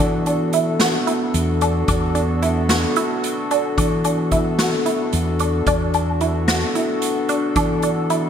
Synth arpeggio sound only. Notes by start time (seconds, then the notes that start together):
0.00 D4
0.27 D4
0.54 E4
0.81 F#4
1.07 E4
1.62 D4
1.88 D4
2.15 D4
2.43 E4
2.70 F#4
2.97 E4
3.51 D4
3.78 D4
4.05 D4
4.32 E4
4.59 F#4
4.86 E4
5.40 D4
5.67 D4
5.94 D4
6.21 E4
6.48 F#4
6.75 E4
7.29 D4
7.56 D4
7.83 D4
8.10 E4